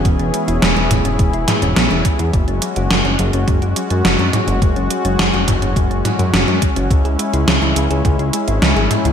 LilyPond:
<<
  \new Staff \with { instrumentName = "Analog synth pad" } { \time 4/4 \key fis \mixolydian \tempo 4 = 105 << { <e b cis' gis'>1 | <gis fis'>1~ | <gis fis'>1 | <gis e'>1 | } \\ { e'1 | cis'1~ | cis'1~ | cis'1 | } >> }
  \new Staff \with { instrumentName = "Synth arpeggio sound" } { \time 4/4 \key fis \mixolydian gis16 cis'16 gis16 e'16 gis16 cis'16 gis16 cis'16 gis16 e'16 gis16 cis'16 gis16 cis'16 gis16 e'16 | fis16 cis'16 fis16 fis'16 fis16 cis'16 fis16 cis'16 fis16 fis'16 fis16 cis'16 fis16 cis'16 fis16 fis'16 | fis16 cis'16 fis16 cis'16 fis16 fis'16 fis16 cis'16 fis16 cis'16 fis16 fis'16 fis16 cis'16 fis16 cis'16 | gis16 gis'16 gis16 e'16 gis16 e'16 gis16 gis'16 gis16 e'16 gis16 e'16 gis16 gis'16 gis16 e'16 | }
  \new Staff \with { instrumentName = "Analog synth bass" } { \clef bass \time 4/4 \key fis \mixolydian e,,16 e,,16 r16 e,,16 e,,16 e,,16 e,,16 e,,16 e,,16 e,,16 r16 e,,16 b,,16 e,,16 r16 e,16 | fis,,16 fis,,16 r16 fis,,16 fis,,16 fis,,16 fis,,16 fis,,16 fis,,16 fis,,16 r16 fis,16 fis,,16 fis,16 r16 fis,,16 | fis,,16 fis,,16 r16 fis,,16 fis,,16 fis,,16 fis,,16 fis,,16 fis,,16 fis,,16 r16 fis,16 fis,,16 fis,16 r16 fis,,16 | cis,16 cis,16 r16 cis,16 cis,16 cis,16 cis,16 cis,16 cis,16 cis,16 r16 gis,,16 cis,16 gis,,16 r16 cis,16 | }
  \new DrumStaff \with { instrumentName = "Drums" } \drummode { \time 4/4 <hh bd>16 hh16 hh16 hh16 <hh sn>16 hh16 <hh bd toml>16 hh16 <hh bd>16 hh16 <hh sn toml>16 hh16 <hh sn>16 hh16 <hh bd>16 hh16 | <hh bd>16 hh16 hh16 hh16 <hh sn>16 hh16 hh16 hh16 <hh bd>16 hh16 hh16 hh16 <hh sn>16 hh16 <hh toml>16 hh16 | <hh bd>16 hh16 hh16 hh16 <hh sn>16 hh16 <hh bd toml>16 hh16 <hh bd>16 hh16 <hh toml>16 hh16 <hh sn>16 hh16 <hh bd>16 hh16 | <hh bd>16 hh16 hh16 hh16 <hh sn>16 hh16 hh16 hh16 <hh bd>16 hh16 hh16 hh16 <hh sn>16 hh16 <hh toml>16 hh16 | }
>>